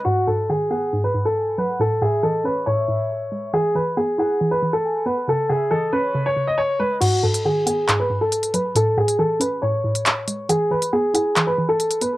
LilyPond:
<<
  \new Staff \with { instrumentName = "Soft synth lead" } { \time 4/4 \key gis \phrygian \tempo 4 = 138 r4. fis''8 r4 gis''8 fis''8 | r8 e''8 dis''8 cis''8 e''2 | r4. fis''8 r4 gis''8 fis''8 | r8 e''8 dis''8 cis''4. r4 |
r1 | r1 | r1 | }
  \new Staff \with { instrumentName = "Upright piano" } { \time 4/4 \key gis \phrygian fis'8 a'8 gis'8 gis'8. b'8 a'8. b'8 | a'8 gis'8 a'8 b'8 cis''2 | gis'8 b'8 gis'8 gis'8. b'8 a'8. b'8 | a'8 gis'8 a'8 b'8. cis''8 dis''16 cis''8 b'8 |
fis'8 a'8 gis'8 gis'8. b'8 a'8. b'8 | a'8 gis'8 a'8 b'8 cis''2 | gis'8 b'8 gis'8 gis'8. b'8 a'8. b'8 | }
  \new Staff \with { instrumentName = "Synth pluck" } { \clef bass \time 4/4 \key gis \phrygian gis,8 gis,8 dis8 b8 gis,8 gis,4 fis8 | a,8 a,8 e8 cis'8 a,8 a,4 gis8 | e8 e8 b8 e'8 e8 e4 b8 | cis8 cis8 e8 cis'8 cis8 cis4 gis8 |
gis,8 gis,8 dis8 b8 gis,8 gis,4 fis8 | a,8 a,8 e8 cis'8 a,8 a,4 gis8 | e8 e8 b8 e'8 e8 e4 b8 | }
  \new DrumStaff \with { instrumentName = "Drums" } \drummode { \time 4/4 r4 r4 r4 r4 | r4 r4 r4 r4 | r4 r4 r4 r4 | r4 r4 r4 r4 |
<cymc hh>8. hh16 r8 hh8 <hc hh>4 hh16 hh16 hh8 | hh8. hh16 r8 hh8 r8. hh16 <hc hh>8 hh8 | hh8. hh16 r8 hh8 <hc hh>4 hh16 hh16 hh8 | }
>>